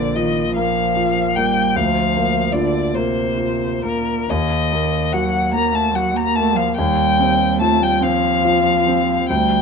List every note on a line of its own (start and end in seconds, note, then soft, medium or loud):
0.00 1.72 A#1 soft
0.00 0.16 D3 medium
0.00 0.40 A#3 soft
0.00 0.17 D5 medium
0.14 0.52 D#3 medium
0.14 0.80 F4 soft
0.14 0.55 D#5 medium
0.53 1.37 F3 medium
0.53 1.21 A#3 soft
0.53 1.37 F5 medium
0.97 1.61 F4 soft
1.35 1.76 G3 medium
1.35 1.76 A#3 soft
1.35 1.78 G5 medium
1.75 4.25 D2 medium
1.75 2.54 F3 medium
1.75 2.54 F5 medium
2.16 2.78 A#3 soft
2.52 2.95 D3 medium
2.52 3.20 F4 soft
2.52 2.97 D5 medium
2.93 3.85 C3 medium
2.93 3.66 A#3 soft
2.93 3.84 C5 medium
3.38 4.12 F4 soft
3.84 4.29 A#2 medium
3.84 4.30 A#3 soft
3.84 4.31 A#4 medium
4.30 6.72 D#2 medium
4.30 5.15 D#3 medium
4.30 5.14 D#5 medium
4.72 5.37 A#3 soft
5.13 5.54 F#3 medium
5.13 5.78 F#4 soft
5.13 5.53 F#5 medium
5.53 5.73 A#3 medium
5.53 6.19 A#3 soft
5.53 5.76 A#5 medium
5.72 5.94 A3 medium
5.72 5.97 A5 medium
5.93 6.16 F#3 medium
5.93 6.60 F#4 soft
5.93 6.18 F#5 medium
6.14 6.37 A#3 medium
6.14 6.37 A#5 medium
6.36 6.57 A3 medium
6.36 6.77 A#3 soft
6.36 6.58 A5 medium
6.55 6.76 F3 medium
6.55 6.76 F5 medium
6.76 9.25 D#2 medium
6.76 7.61 G3 medium
6.76 7.58 G5 medium
7.20 7.85 C4 soft
7.59 7.82 A3 medium
7.59 8.27 F4 soft
7.59 7.84 A5 medium
7.80 8.01 G3 medium
7.80 8.04 G5 medium
8.00 9.27 F3 medium
8.00 8.69 C4 soft
8.00 9.29 F5 medium
8.45 9.11 F4 soft
8.87 9.29 C4 soft
9.29 9.62 D2 medium
9.29 9.62 G3 medium
9.29 9.62 G5 medium